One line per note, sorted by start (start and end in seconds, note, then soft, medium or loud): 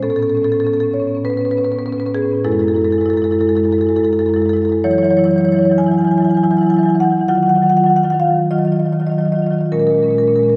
0.03 0.12 A2 medium
0.03 0.12 B3 medium
0.03 0.11 C#4 medium
0.03 0.10 A4 medium
0.10 0.22 A2 soft
0.10 0.20 B3 soft
0.10 0.19 C#4 soft
0.10 0.16 A4 medium
0.16 0.28 B3 soft
0.16 0.27 C#4 soft
0.16 0.23 A4 medium
0.22 0.32 A2 medium
0.22 0.30 A4 medium
0.27 0.36 B3 soft
0.27 0.35 C#4 soft
0.27 0.37 A4 medium
0.32 0.43 A2 soft
0.32 0.45 B3 soft
0.32 0.42 C#4 soft
0.37 0.44 A4 medium
0.42 0.54 A2 medium
0.42 0.53 B3 soft
0.42 0.49 C#4 soft
0.42 0.52 A4 medium
0.49 0.61 B3 soft
0.49 0.57 C#4 soft
0.49 0.60 A4 medium
0.54 0.64 A2 soft
0.54 0.64 C#4 soft
0.60 0.72 A2 medium
0.60 0.70 B3 soft
0.60 0.67 A4 medium
0.64 0.74 C#4 soft
0.64 0.74 A4 medium
0.70 0.81 A2 soft
0.70 0.77 B3 soft
0.70 0.80 A4 medium
0.74 0.86 B3 soft
0.74 0.83 C#4 soft
0.80 0.91 A2 soft
0.80 0.91 C#4 soft
0.80 0.89 A4 medium
0.86 0.94 B3 soft
0.91 1.02 A2 soft
0.91 1.01 B3 soft
0.91 1.00 C#4 soft
0.91 1.22 C#5 medium
1.00 1.11 A2 soft
1.00 1.09 B3 soft
1.00 1.07 C#4 soft
1.07 1.20 A2 soft
1.07 1.17 B3 soft
1.07 1.15 C#4 soft
1.15 1.20 B3 soft
1.15 1.20 C#4 soft
1.25 1.35 A2 medium
1.25 1.33 B3 medium
1.25 1.33 C#4 medium
1.25 1.30 B4 medium
1.30 1.41 B3 soft
1.30 1.41 C#4 soft
1.30 1.37 B4 medium
1.35 1.45 A2 soft
1.35 1.45 B4 medium
1.41 1.48 B3 soft
1.41 1.49 C#4 soft
1.45 1.57 A2 medium
1.45 1.56 B3 soft
1.45 1.51 B4 medium
1.49 1.57 C#4 soft
1.49 1.58 B4 medium
1.56 1.66 A2 soft
1.56 1.64 B3 soft
1.56 1.66 C#4 soft
1.56 1.65 B4 medium
1.64 1.76 A2 soft
1.64 1.71 B3 soft
1.64 1.74 C#4 soft
1.64 1.72 B4 medium
1.71 1.79 B3 soft
1.71 1.82 C#4 soft
1.71 1.79 B4 medium
1.76 1.88 A2 soft
1.76 1.86 B3 soft
1.76 1.86 B4 medium
1.82 1.90 C#4 soft
1.82 1.92 B4 medium
1.86 1.97 A2 medium
1.86 1.93 B3 soft
1.86 1.98 C#4 soft
1.92 2.01 B3 soft
1.92 2.00 B4 medium
1.97 2.06 A2 soft
1.97 2.06 C#4 soft
1.97 2.06 B4 medium
2.01 2.10 B3 soft
2.06 2.15 A2 medium
2.06 2.17 B3 soft
2.06 2.14 C#4 soft
2.06 2.11 B4 medium
2.14 2.25 A2 soft
2.14 2.25 B3 soft
2.14 2.22 C#4 soft
2.14 2.43 G#4 medium
2.22 2.35 A2 soft
2.22 2.33 B3 soft
2.22 2.31 C#4 soft
2.31 2.41 A2 soft
2.31 2.41 B3 soft
2.31 2.41 C#4 soft
2.44 2.54 F#2 medium
2.44 2.53 G#3 medium
2.44 2.52 E4 medium
2.44 2.52 A4 medium
2.52 2.64 F#2 medium
2.52 2.61 G#3 soft
2.52 2.60 E4 soft
2.52 2.59 A4 medium
2.59 2.69 G#3 soft
2.59 2.68 E4 soft
2.59 2.68 A4 medium
2.64 2.73 F#2 medium
2.68 2.77 G#3 soft
2.68 2.74 E4 soft
2.68 2.76 A4 medium
2.73 2.84 F#2 medium
2.73 2.85 G#3 soft
2.73 2.82 E4 soft
2.73 2.84 A4 medium
2.82 2.94 F#2 medium
2.82 2.93 G#3 soft
2.82 2.91 E4 soft
2.82 2.92 A4 medium
2.91 3.04 F#2 medium
2.91 3.01 G#3 soft
2.91 2.98 E4 soft
2.91 3.01 A4 medium
2.98 3.09 G#3 soft
2.98 3.06 E4 soft
2.98 3.10 A4 medium
3.04 3.13 F#2 medium
3.04 3.14 E4 medium
3.09 3.17 G#3 soft
3.09 3.17 A4 medium
3.13 3.23 F#2 medium
3.13 3.25 G#3 soft
3.13 3.22 E4 soft
3.13 3.24 A4 medium
3.22 3.32 F#2 medium
3.22 3.33 G#3 soft
3.22 3.31 E4 soft
3.22 3.32 A4 medium
3.31 3.40 F#2 medium
3.31 3.41 G#3 soft
3.31 3.39 E4 soft
3.31 3.41 A4 medium
3.39 3.49 F#2 medium
3.39 3.50 G#3 soft
3.39 3.47 E4 medium
3.39 3.49 A4 medium
3.47 3.59 F#2 medium
3.47 3.58 G#3 soft
3.47 3.55 E4 soft
3.47 3.57 A4 medium
3.55 3.69 F#2 medium
3.55 3.65 G#3 soft
3.55 3.63 E4 soft
3.55 3.65 A4 medium
3.63 3.74 G#3 soft
3.63 3.71 E4 soft
3.63 3.72 A4 medium
3.69 3.79 F#2 soft
3.69 3.78 E4 soft
3.69 3.81 A4 medium
3.74 3.82 G#3 soft
3.78 3.89 F#2 medium
3.78 3.90 G#3 soft
3.78 3.87 E4 soft
3.78 3.89 A4 medium
3.87 4.00 F#2 medium
3.87 3.99 G#3 soft
3.87 3.96 E4 medium
3.87 3.96 A4 medium
3.96 4.09 F#2 medium
3.96 4.06 G#3 soft
3.96 4.04 E4 soft
3.96 4.05 A4 medium
4.04 4.13 G#3 soft
4.04 4.13 E4 soft
4.04 4.13 A4 medium
4.09 4.19 F#2 soft
4.09 4.21 G#3 soft
4.09 4.21 E4 soft
4.09 4.19 A4 medium
4.19 4.28 F#2 medium
4.19 4.29 G#3 soft
4.19 4.29 E4 soft
4.19 4.26 A4 medium
4.26 4.36 F#2 medium
4.26 4.37 G#3 soft
4.26 4.36 E4 soft
4.26 4.34 A4 medium
4.34 4.46 F#2 medium
4.34 4.46 G#3 soft
4.34 4.46 E4 medium
4.34 4.42 A4 medium
4.42 4.53 E4 soft
4.42 4.49 A4 medium
4.46 4.56 F#2 medium
4.46 4.53 G#3 soft
4.46 4.57 A4 medium
4.53 4.66 F#2 medium
4.53 4.63 G#3 soft
4.53 4.62 E4 medium
4.53 4.65 A4 medium
4.62 4.71 G#3 soft
4.62 4.69 E4 soft
4.62 4.72 A4 medium
4.66 4.80 F#2 medium
4.66 4.80 E4 soft
4.71 4.80 G#3 soft
4.71 4.81 A4 medium
4.84 4.93 E3 medium
4.84 4.93 F#3 medium
4.84 4.91 E4 medium
4.84 4.91 C#5 loud
4.91 5.03 E3 medium
4.91 5.01 F#3 soft
4.91 4.98 E4 soft
4.91 4.98 C#5 medium
4.98 5.09 F#3 soft
4.98 5.06 E4 medium
4.98 5.04 C#5 medium
5.03 5.11 E3 medium
5.03 5.12 E4 soft
5.03 5.11 C#5 medium
5.09 5.18 E3 medium
5.09 5.18 F#3 soft
5.09 5.19 E4 soft
5.09 5.17 C#5 medium
5.17 5.28 E3 medium
5.17 5.26 F#3 soft
5.17 5.25 E4 soft
5.17 5.24 C#5 medium
5.24 5.36 E3 medium
5.24 5.35 F#3 soft
5.24 5.33 E4 medium
5.24 5.31 C#5 medium
5.31 5.41 E4 soft
5.31 5.38 C#5 medium
5.35 5.45 E3 medium
5.35 5.44 F#3 soft
5.35 5.45 C#5 medium
5.41 5.54 E3 medium
5.41 5.53 F#3 soft
5.41 5.49 E4 soft
5.41 5.52 C#5 medium
5.49 5.56 E4 soft
5.49 5.59 C#5 medium
5.53 5.63 E3 medium
5.53 5.61 F#3 soft
5.53 5.64 E4 medium
5.59 5.70 F#3 soft
5.59 5.65 C#5 medium
5.63 5.71 E3 medium
5.63 5.71 E4 soft
5.63 5.74 C#5 medium
5.70 5.80 E3 medium
5.70 5.78 F#3 soft
5.70 5.79 E4 soft
5.78 5.88 E3 medium
5.78 5.86 F#3 soft
5.78 5.86 E4 soft
5.78 5.84 G#5 medium
5.84 5.95 F#3 soft
5.84 5.94 E4 medium
5.84 5.91 G#5 medium
5.88 5.98 E3 medium
5.88 5.99 G#5 medium
5.94 6.02 F#3 soft
5.94 6.01 E4 soft
5.98 6.07 E3 medium
5.98 6.08 E4 medium
5.98 6.05 G#5 medium
6.02 6.11 F#3 soft
6.02 6.11 G#5 medium
6.07 6.17 E3 medium
6.07 6.15 E4 soft
6.11 6.20 F#3 soft
6.11 6.22 E4 medium
6.11 6.18 G#5 medium
6.17 6.25 E3 medium
6.17 6.28 F#3 soft
6.17 6.24 G#5 medium
6.22 6.34 E3 medium
6.22 6.30 E4 soft
6.22 6.31 G#5 medium
6.28 6.37 F#3 soft
6.28 6.37 E4 medium
6.28 6.37 G#5 medium
6.34 6.43 E3 medium
6.34 6.45 F#3 soft
6.34 6.44 E4 soft
6.34 6.44 G#5 medium
6.43 6.51 E3 medium
6.43 6.54 F#3 soft
6.43 6.51 E4 medium
6.43 6.51 G#5 medium
6.51 6.61 E3 medium
6.51 6.61 F#3 soft
6.51 6.58 E4 soft
6.51 6.57 G#5 medium
6.57 6.69 E3 medium
6.57 6.66 E4 medium
6.57 6.63 G#5 medium
6.61 6.70 F#3 soft
6.61 6.70 G#5 medium
6.66 6.78 E3 medium
6.66 6.78 F#3 soft
6.66 6.74 E4 soft
6.66 6.77 G#5 medium
6.74 6.86 F#3 soft
6.74 6.81 E4 soft
6.74 6.83 G#5 medium
6.78 6.86 E3 medium
6.78 6.89 E4 soft
6.83 6.95 E3 medium
6.83 6.94 F#3 medium
6.83 6.90 G#5 medium
6.89 6.96 E4 medium
6.89 6.95 G#5 medium
6.94 7.04 E3 medium
6.94 7.03 F#3 soft
6.94 7.03 E4 soft
7.00 7.12 E3 medium
7.00 7.11 F#3 soft
7.00 7.10 E4 medium
7.00 7.27 F#5 loud
7.10 7.21 E3 medium
7.10 7.20 F#3 soft
7.10 7.18 E4 soft
7.18 7.26 E3 medium
7.18 7.26 F#3 soft
7.18 7.26 E4 soft
7.28 7.38 D#3 medium
7.28 7.37 F#3 medium
7.28 7.38 F4 medium
7.28 7.35 F#5 loud
7.35 7.48 D#3 medium
7.35 7.46 F#3 soft
7.35 7.46 F4 soft
7.35 7.43 F#5 medium
7.43 7.55 F#3 medium
7.43 7.55 F4 soft
7.43 7.49 F#5 medium
7.48 7.57 D#3 medium
7.48 7.56 F#5 medium
7.55 7.66 D#3 medium
7.55 7.62 F#3 soft
7.55 7.64 F4 soft
7.55 7.63 F#5 medium
7.62 7.70 F#3 soft
7.62 7.72 F4 soft
7.62 7.70 F#5 medium
7.66 7.77 D#3 medium
7.66 7.77 F#5 medium
7.70 7.78 F#3 soft
7.70 7.80 F4 soft
7.77 7.86 D#3 medium
7.77 7.86 F#3 soft
7.77 7.87 F4 soft
7.77 7.84 F#5 medium
7.84 7.96 D#3 medium
7.84 7.96 F#3 soft
7.84 7.97 F4 soft
7.84 7.90 F#5 medium
7.90 7.96 F#5 medium
7.96 8.04 D#3 medium
7.96 8.04 F#3 soft
7.96 8.05 F4 soft
7.96 8.03 F#5 medium
8.03 8.14 D#3 medium
8.03 8.12 F#3 soft
8.03 8.13 F4 soft
8.03 8.10 F#5 medium
8.10 8.22 F#3 soft
8.10 8.20 F4 soft
8.10 8.16 F#5 medium
8.14 8.25 D#3 medium
8.20 8.31 F#3 soft
8.20 8.28 F4 soft
8.20 8.49 F5 medium
8.25 8.34 D#3 medium
8.25 8.36 F4 soft
8.31 8.46 D#3 medium
8.31 8.39 F#3 medium
8.36 8.46 F#3 soft
8.36 8.46 F4 soft
8.51 8.59 D#3 medium
8.51 8.59 F#3 medium
8.51 8.58 F4 medium
8.51 8.58 D#5 medium
8.58 8.67 D#3 medium
8.58 8.68 F#3 soft
8.58 8.65 F4 soft
8.58 8.65 D#5 medium
8.65 8.76 D#3 medium
8.65 8.76 F#3 soft
8.65 8.72 F4 soft
8.65 8.72 D#5 medium
8.72 8.80 F4 soft
8.72 8.79 D#5 medium
8.76 8.85 D#3 medium
8.76 8.84 F#3 soft
8.76 8.86 F4 soft
8.76 8.86 D#5 medium
8.84 8.93 D#3 medium
8.84 8.93 F#3 soft
8.84 8.93 F4 soft
8.84 8.92 D#5 medium
8.92 9.01 D#3 medium
8.92 9.02 F#3 soft
8.92 8.99 F4 soft
8.92 9.00 D#5 medium
8.99 9.10 D#3 medium
8.99 9.10 F#3 soft
8.99 9.07 F4 soft
8.99 9.07 D#5 medium
9.07 9.18 D#3 medium
9.07 9.18 F#3 soft
9.07 9.14 F4 soft
9.07 9.12 D#5 medium
9.12 9.21 F4 soft
9.12 9.19 D#5 medium
9.18 9.26 D#3 medium
9.18 9.26 F#3 soft
9.18 9.28 F4 soft
9.18 9.25 D#5 medium
9.25 9.34 D#3 medium
9.25 9.35 F#3 soft
9.25 9.36 F4 soft
9.25 9.32 D#5 medium
9.32 9.43 D#3 medium
9.32 9.43 F#3 soft
9.32 9.39 D#5 medium
9.36 9.44 F4 soft
9.36 9.46 D#5 medium
9.43 9.50 D#3 medium
9.43 9.51 F#3 soft
9.43 9.52 F4 soft
9.43 9.53 D#5 medium
9.50 9.59 D#3 medium
9.50 9.60 F#3 soft
9.50 9.58 F4 soft
9.50 9.61 D#5 medium
9.58 9.70 D#3 medium
9.58 9.70 F#3 soft
9.58 9.66 F4 soft
9.58 9.69 D#5 medium
9.66 9.70 F4 soft
9.72 9.81 A#2 medium
9.72 9.81 G#3 soft
9.72 9.81 C#4 soft
9.72 9.79 A#4 medium
9.79 9.90 A#2 soft
9.79 9.89 G#3 soft
9.79 9.88 C#4 soft
9.79 9.87 A#4 medium
9.87 9.99 A#2 medium
9.87 9.98 G#3 soft
9.87 9.96 C#4 soft
9.87 9.95 A#4 medium
9.95 10.06 G#3 soft
9.95 10.04 C#4 soft
9.95 10.03 A#4 medium
9.99 10.09 A#2 soft
9.99 10.11 A#4 medium
10.04 10.14 G#3 soft
10.04 10.12 C#4 soft
10.09 10.18 A#2 medium
10.09 10.21 C#4 soft
10.09 10.18 A#4 medium
10.14 10.28 A#2 soft
10.14 10.23 G#3 soft
10.14 10.27 A#4 medium
10.21 10.31 G#3 soft
10.21 10.28 C#4 soft
10.27 10.39 A#2 soft
10.27 10.37 C#4 soft
10.27 10.36 A#4 medium
10.31 10.39 G#3 soft
10.36 10.48 A#2 soft
10.36 10.48 G#3 soft
10.36 10.45 C#4 soft
10.36 10.43 A#4 medium
10.43 10.53 C#4 soft
10.43 10.50 A#4 medium
10.48 10.56 A#2 soft
10.48 10.56 G#3 soft
10.48 10.56 A#4 medium
10.53 10.56 C#4 soft